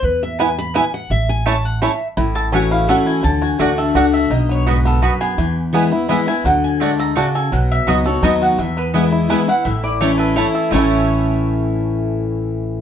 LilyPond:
<<
  \new Staff \with { instrumentName = "Mandolin" } { \time 3/4 \key a \major \tempo 4 = 168 r2. | r2. | r8 a''8 gis''8 f''8 fis''8 gis''8 | a''8 gis''8 fis''8 e''8 fis''8 e''8 |
dis''8 cis''8 b'8 a'8 b'8 gis'8~ | gis'8 r4. e''8 gis''8 | fis''8 gis''8 a''8 bes''8 a''8 gis''8 | fis''8 e''8 dis''8 cis''8 dis''8 fis''8 |
e''8 b'8 r4 gis''8 fis''8 | e''8 d''8 cis''8 b'8 cis''8 r8 | cis''2.~ | cis''2. | }
  \new Staff \with { instrumentName = "Mandolin" } { \time 3/4 \key a \major r4 <b e' b' gis''>16 r8. <b e' b' gis''>16 r8. | r4 <a e' cis'' a''>16 r8. <a e' cis'' a''>16 r8. | r4 <a e' cis'' fis''>16 r8. <a e' cis'' fis''>16 r8. | r4 <a fis' d'' fis''>16 r8. <a fis' d'' fis''>16 r8. |
r4 <b fis' dis'' b''>16 r8. <b fis' dis'' b''>16 r8. | r4 <b e' b' gis''>16 r8. <b e' b' gis''>16 r8. | r4 <a fis' d'' fis''>16 r8. <a fis' d'' fis''>16 r8. | r4 <b fis' dis'' b''>16 r8. <b fis' dis'' b''>16 r8. |
r4 <b e' b' gis''>16 r8. <b e' b' gis''>16 r8. | r4 <a e' cis'' a''>16 r8. <a e' cis'' a''>16 r8. | <a e' cis'' a''>2.~ | <a e' cis'' a''>2. | }
  \new Staff \with { instrumentName = "Five-string banjo" } { \time 3/4 \key a \major r4 <b e'>8 r8 <b e'>8 r8 | r4 <a cis' e'>8 r8 <a cis' e'>8 r8 | e'8 a'8 cis'8 e'8 a'8 e'8 | fis8 fis'8 a8 a'8 fis'8 a'8 |
dis'8 b8 fis'8 b8 fis'8 b8 | e4 b8 e'8 e'8 e'8 | fis4 a8 a'8 fis'8 a'8 | fis4 fis'8 a'8 dis'8 fis'8 |
e8 b8 e'8 e'8 e'8 e'8 | e8 e'8 a8 a'8 e'8 a'8 | <a cis' e' a'>2.~ | <a cis' e' a'>2. | }
  \new Staff \with { instrumentName = "Steel-string acoustic guitar" } { \time 3/4 \key a \major << { b'8 e''8 gis''8 b''8 gis''8 fis''8 | e''8 gis''8 a''8 fis''8 e''8. r16 | r4 <e a cis' fis'>4 <e a cis' fis'>4 | r4 <d a d' fis'>4 <a d' fis'>4 |
r2. | r4 <e gis b e'>8 <b e'>8 <e gis b e'>8 <b e'>8 | r2. | r4 <fis b dis' fis'>8 <dis' fis'>8 <fis b dis' fis'>4 |
r4 <e gis b e'>4 <e gis b e'>8 <b e'>8 | r4 <e a cis' e'>4 <e a cis' e'>4 | <a, e a cis' e'>2.~ | <a, e a cis' e'>2. | } \\ { r2. | r2. | a,2 r4 | d2 r4 |
b,4 gis,4 fis,4 | e,2 r4 | d4 gis4 cis4 | b,2 r4 |
e,2 r4 | a,2 r4 | r2. | r2. | } >> }
  \new Staff \with { instrumentName = "Upright bass" } { \clef bass \time 3/4 \key a \major e,2. | a,,2. | a,,2. | d,4 d,4 cis,4 |
b,,2. | e,2. | d,2. | b,,4 cis,4 dis,4 |
e,2. | a,,2. | a,,2.~ | a,,2. | }
>>